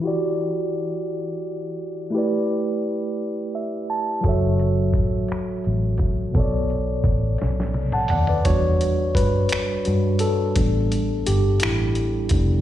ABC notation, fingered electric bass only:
X:1
M:6/8
L:1/8
Q:3/8=57
K:Edor
V:1 name="Fingered electric bass" clef=bass
z6 | z6 | F,,,2 A,,, z A,,,2 | B,,,2 A,,, B,,,2 ^D,, |
E,,2 G,, z G,,2 | A,,,2 G,,, A,,,2 =F,,, |]